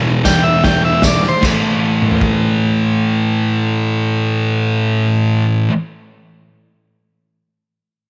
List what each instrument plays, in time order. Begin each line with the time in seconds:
Already playing: distorted electric guitar E2 B2 E3
0.25 distorted electric guitar E2 B2 E3, transistor combo organ G5, kick, snare, open hi-hat, tambourine
0.43 transistor combo organ E5
0.64 transistor combo organ G5, kick, snare, open hi-hat
0.85 transistor combo organ E5
1.02 kick, snare, open hi-hat, tambourine
1.07 transistor combo organ D5
1.23 snare
1.28 transistor combo organ C5
1.41 distorted electric guitar A2 E3, kick, crash, tambourine
1.45 distorted electric guitar A3
2.02 mid tom
2.11 floor tom
2.21 kick